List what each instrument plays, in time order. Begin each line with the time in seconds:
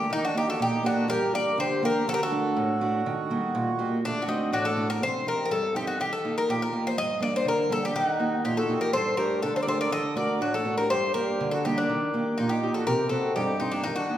Already playing: bouzouki G4
0.10 steel-string acoustic guitar D#3, accordion A#3, bouzouki D#4
0.25 accordion D4, bouzouki F#4
0.35 steel-string acoustic guitar A#3 D#4 G4, accordion D#4, bouzouki G4
0.48 accordion F#4, bouzouki A4
0.60 steel-string acoustic guitar A#2, accordion D#4, bouzouki G4
0.83 steel-string acoustic guitar A#3 D#4 G4, accordion D4, bouzouki F#4
1.08 steel-string acoustic guitar G2, accordion G4, bouzouki A#4
1.33 steel-string acoustic guitar A#3 D4 G4, accordion A#4, bouzouki D5
1.58 steel-string acoustic guitar D3, accordion G4, bouzouki C5
1.83 steel-string acoustic guitar A#3 D4 G4, accordion G4, bouzouki A#4
2.08 steel-string acoustic guitar D3, accordion F#4, bouzouki A4
2.14 accordion G4, bouzouki A#4
2.23 accordion F#4, bouzouki A4
2.31 steel-string acoustic guitar A3 D4 F#4
2.56 steel-string acoustic guitar A2
2.81 steel-string acoustic guitar A3 D4 F#4
3.06 steel-string acoustic guitar D#3
3.30 steel-string acoustic guitar G3 A#3 D#4
3.55 steel-string acoustic guitar A#2
3.79 steel-string acoustic guitar A#3 D#4 G4
4.05 steel-string acoustic guitar D3, accordion A3, bouzouki D4
4.22 accordion D4, bouzouki F#4
4.28 steel-string acoustic guitar A3 D4 F#4, accordion C4, bouzouki D#4
4.53 steel-string acoustic guitar A2, accordion A3, bouzouki D4 F#4
4.65 bouzouki A4
4.77 steel-string acoustic guitar A3 D4 F#4
4.90 bouzouki A#4
5.02 steel-string acoustic guitar C3, bouzouki C5
5.26 steel-string acoustic guitar C4 D#4 G4, bouzouki A#4
5.45 bouzouki A#4
5.51 steel-string acoustic guitar G2, bouzouki A4
5.75 steel-string acoustic guitar C4 D#4 G4, bouzouki G4
5.87 bouzouki F#4
6.00 steel-string acoustic guitar D#3, bouzouki G4
6.13 bouzouki A4
6.24 steel-string acoustic guitar A#3 D#4 G4
6.38 bouzouki A#4
6.49 steel-string acoustic guitar A#2, bouzouki G4
6.62 bouzouki A#4
6.73 steel-string acoustic guitar A#3 D#4 G4
6.87 bouzouki C5
6.97 steel-string acoustic guitar G2, bouzouki D#5
7.20 steel-string acoustic guitar G3 A#3 D4, bouzouki D5
7.36 bouzouki C5
7.45 steel-string acoustic guitar D3, bouzouki A#4
7.70 steel-string acoustic guitar G3 A#3 D4, bouzouki A4
7.85 bouzouki G4
7.95 steel-string acoustic guitar D#3, accordion D#4, bouzouki G4
8.07 bouzouki F#4
8.20 steel-string acoustic guitar A#3 D#4 G4
8.44 steel-string acoustic guitar A#2, accordion D#4, bouzouki G4
8.57 accordion F#4, bouzouki A4
8.69 steel-string acoustic guitar A#3 D#4 G4
8.81 accordion G4, bouzouki A#4
8.93 steel-string acoustic guitar G2, accordion A4, bouzouki C5
9.17 steel-string acoustic guitar A3 D4 G4, accordion G4, bouzouki A#4
9.42 steel-string acoustic guitar D3, accordion D4, bouzouki A4
9.55 accordion A4, bouzouki C5
9.61 accordion A#4, bouzouki D5
9.66 steel-string acoustic guitar A3 D4 G4, accordion A4, bouzouki C5
9.79 accordion A#4, bouzouki D5
9.91 steel-string acoustic guitar D3, accordion A4, bouzouki D#5
10.16 steel-string acoustic guitar A3 D4 F#4, accordion A#4, bouzouki D5
10.41 steel-string acoustic guitar A2, accordion D4, bouzouki F#4
10.53 accordion F#4, bouzouki A4
10.65 steel-string acoustic guitar A3 D4 F#4
10.78 accordion G4, bouzouki A#4
10.89 steel-string acoustic guitar G2, accordion G4, bouzouki C5
11.14 steel-string acoustic guitar G3 A#3 D4, accordion G4, bouzouki A#4
11.40 steel-string acoustic guitar D3
11.51 accordion F#4, bouzouki A4
11.65 steel-string acoustic guitar G3 A#3 D4, accordion D#4, bouzouki G4
11.78 accordion A#3, bouzouki D4
11.89 steel-string acoustic guitar D#3
12.14 steel-string acoustic guitar D#3 A#3 G4
12.38 steel-string acoustic guitar A#2, accordion A#3, bouzouki D#4
12.49 accordion D#4, bouzouki G4
12.63 steel-string acoustic guitar A#3 D#4 G4
12.74 accordion F#4, bouzouki A4
12.87 steel-string acoustic guitar C3, accordion G4, bouzouki A#4
13.09 steel-string acoustic guitar C4 D#4 G4, accordion F#4, bouzouki A4
13.36 steel-string acoustic guitar G2, accordion D#4, bouzouki G4
13.60 steel-string acoustic guitar C4 D#4 G4, accordion C4, bouzouki D#4
13.72 accordion A#3, bouzouki D4
13.84 steel-string acoustic guitar D#3, accordion A#3, bouzouki D#4
13.96 accordion D4, bouzouki F#4
14.09 steel-string acoustic guitar A#3 D#4 G4